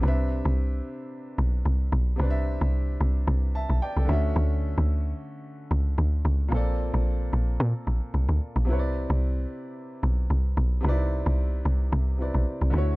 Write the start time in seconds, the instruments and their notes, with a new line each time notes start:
0.00 log drum bass C2, grand piano C3 C4 D4
0.06 grand piano B4 E5
0.45 log drum bass C2
1.38 log drum bass B1
1.65 log drum bass C2
1.92 log drum bass B1
2.16 log drum bass C2, grand piano C3 C4 D4
2.22 grand piano B4 D5
2.30 grand piano E5
2.61 log drum bass C2
3.01 log drum bass C2
3.27 log drum bass C2
3.55 grand piano E5 A5
3.70 log drum bass B1
3.82 grand piano D5 G5
3.97 log drum bass C2, grand piano A4 D5
4.05 log drum bass D2, grand piano D3 A3 C#4 E5
4.11 grand piano F#4 E5
4.36 log drum bass D2
4.78 log drum bass D2
5.71 log drum bass C#2
5.98 log drum bass D2
6.25 log drum bass C#2
6.48 log drum bass A#1, grand piano A#2 A#3 C4
6.54 grand piano A4 D5
6.94 log drum bass A#1
7.33 log drum bass A#1
7.60 log drum bass A#2
7.87 log drum bass A#1
8.14 log drum bass C2
8.29 log drum bass D2
8.56 log drum bass A#1
8.65 log drum bass C2, grand piano C3 C4 E4
8.71 grand piano B4 C#5
8.79 grand piano D5
9.10 log drum bass C2
10.03 log drum bass B1
10.30 log drum bass C2
10.57 log drum bass B1
10.81 log drum bass C2, grand piano C3 C4
10.85 grand piano D#4 B4 D5
10.91 grand piano E4
11.26 log drum bass C2
11.65 log drum bass C2
11.92 log drum bass C2
12.18 grand piano C3 C4 E4 B4 D5
12.34 log drum bass B1
12.61 log drum bass C2
12.70 log drum bass D2, grand piano D3 A3
12.74 grand piano E4 F#4 C#5